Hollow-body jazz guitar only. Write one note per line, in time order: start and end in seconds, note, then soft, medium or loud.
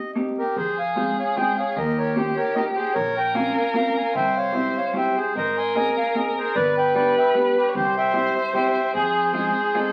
0.15 0.37 A#3 medium
0.15 0.37 C4 medium
0.15 0.38 D#4 medium
0.15 0.38 G4 medium
0.96 1.18 G#3 medium
0.96 1.18 C4 soft
0.96 1.18 F4 soft
0.96 1.18 G#4 medium
1.37 1.58 G#3 medium
1.37 1.58 C4 medium
1.37 1.58 F4 soft
1.37 1.58 G#4 medium
2.16 2.37 A#3 medium
2.16 2.37 D#4 medium
2.16 2.38 F4 medium
2.16 2.38 G4 medium
2.56 2.77 A#3 medium
2.56 2.77 D#4 soft
2.56 2.78 F4 medium
2.56 2.78 G4 medium
3.35 3.56 A#3 medium
3.35 3.57 C4 medium
3.35 3.57 C#4 medium
3.35 3.57 F4 medium
3.74 3.96 A#3 medium
3.74 3.96 C4 medium
3.74 3.96 C#4 soft
3.74 3.96 F4 medium
4.53 4.75 G3 medium
4.53 4.75 C4 medium
4.53 4.76 E4 medium
4.53 4.76 G4 medium
4.93 5.16 G3 medium
4.93 5.16 C4 soft
4.93 5.16 E4 medium
4.93 5.17 G4 medium
5.75 5.97 A#3 medium
5.75 5.97 C4 medium
5.75 5.97 D#4 soft
5.75 5.98 G#4 medium
6.15 6.37 A#3 medium
6.15 6.37 C4 medium
6.15 6.37 D#4 medium
6.15 6.38 G#4 medium
6.95 7.17 G3 medium
6.95 7.17 B3 soft
6.95 7.17 D4 medium
6.95 7.17 G4 medium
7.34 7.56 G3 medium
7.34 7.57 B3 medium
7.34 7.57 D4 soft
7.34 7.57 G4 medium
8.13 8.36 G3 medium
8.13 8.36 C4 soft
8.13 8.36 E4 medium
8.13 8.36 G4 medium
8.54 8.76 G3 medium
8.54 8.76 C4 medium
8.54 8.76 E4 medium
8.54 8.76 G4 medium
9.33 9.55 G#3 medium
9.33 9.56 C4 soft
9.33 9.56 D#4 medium
9.33 9.56 F4 medium
9.75 9.92 G#3 medium
9.75 9.92 C4 medium
9.75 9.92 D#4 medium
9.75 9.92 F4 medium